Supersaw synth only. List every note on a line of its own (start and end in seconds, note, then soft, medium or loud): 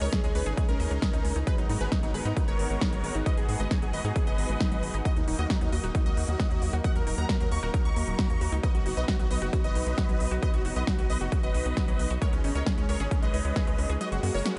0.02 0.10 A#4 medium
0.02 0.10 C#5 medium
0.13 0.21 G#4 medium
0.24 0.32 G#4 medium
0.35 0.43 G#4 medium
0.35 0.43 B4 loud
0.46 0.54 G#4 medium
0.58 0.66 G#4 medium
0.69 1.38 C#4 medium
0.69 1.38 A#4 loud
1.47 1.55 G#4 medium
1.47 1.55 B4 loud
1.58 1.66 D#4 medium
1.69 1.77 D#4 medium
1.81 1.89 G#4 medium
1.81 1.89 B4 medium
1.92 2.00 D#4 medium
2.03 2.11 D#4 medium
2.14 2.22 G#4 medium
2.14 2.22 B4 loud
2.25 2.33 D#4 medium
2.37 2.45 D#4 medium
2.48 3.17 A#4 medium
2.48 3.17 C#5 loud
3.26 3.34 B4 medium
3.26 3.34 D#5 loud
3.37 3.45 G#4 medium
3.48 3.57 G#4 medium
3.60 3.68 B4 medium
3.60 3.68 D#5 loud
3.71 3.79 G#4 medium
3.82 3.90 G#4 medium
3.93 4.01 B4 medium
3.93 4.01 D#5 loud
4.04 4.12 G#4 medium
4.16 4.24 G#4 medium
4.27 4.96 B4 medium
4.27 4.96 D#5 loud
5.05 5.13 F#4 medium
5.05 5.13 D#5 loud
5.17 5.24 D#4 medium
5.28 5.36 D#4 medium
5.39 5.47 F#4 medium
5.39 5.47 D#5 medium
5.50 5.58 D#4 medium
5.61 5.69 D#4 medium
5.72 5.80 F#4 medium
5.72 5.80 D#5 loud
5.84 5.92 D#4 medium
5.95 6.03 D#4 medium
6.06 6.75 F#4 medium
6.06 6.75 D#5 loud
6.84 6.92 D#5 medium
6.84 6.92 F#5 loud
6.96 7.04 A#4 medium
7.07 7.15 A#4 medium
7.18 7.26 F#5 medium
7.18 7.26 A#5 loud
7.29 7.37 A#4 medium
7.40 7.48 A#4 medium
7.51 7.59 A#5 medium
7.51 7.59 C#6 loud
7.63 7.71 A#4 medium
7.74 7.82 A#4 medium
7.85 8.55 A#5 medium
7.85 8.55 C#6 loud
8.64 8.72 B4 medium
8.64 8.72 D#5 loud
8.75 8.83 F#4 medium
8.86 8.94 F#4 medium
8.97 9.05 B4 medium
8.97 9.05 D#5 medium
9.08 9.16 F#4 medium
9.20 9.28 F#4 medium
9.31 9.39 B4 medium
9.31 9.39 D#5 loud
9.42 9.50 F#4 medium
9.53 9.61 F#4 medium
9.64 10.34 B4 medium
9.64 10.34 D#5 loud
10.43 10.51 B4 medium
10.43 10.51 D#5 loud
10.54 10.62 F#4 medium
10.65 10.73 F#4 medium
10.76 10.84 B4 medium
10.76 10.84 D#5 loud
10.87 10.95 F#4 medium
10.99 11.07 F#4 medium
11.10 11.18 B4 medium
11.10 11.18 D#5 medium
11.21 11.29 F#4 medium
11.32 11.40 F#4 medium
11.43 12.13 B4 medium
11.43 12.13 D#5 loud
12.22 12.30 A#4 medium
12.22 12.30 C#5 loud
12.33 12.41 C#4 medium
12.44 12.52 C#4 medium
12.55 12.63 A#4 medium
12.55 12.63 C#5 loud
12.66 12.74 C#4 medium
12.78 12.86 C#4 medium
12.89 12.97 A#4 medium
12.89 12.97 C#5 loud
13.00 13.08 C#4 medium
13.11 13.19 C#4 medium
13.22 13.92 B4 medium
13.22 13.92 D#5 loud
14.01 14.09 F#4 medium
14.01 14.09 D#5 loud
14.12 14.20 F#4 medium
14.23 14.31 F#4 medium
14.34 14.42 A#4 medium
14.34 14.42 C#5 medium
14.46 14.54 F#4 medium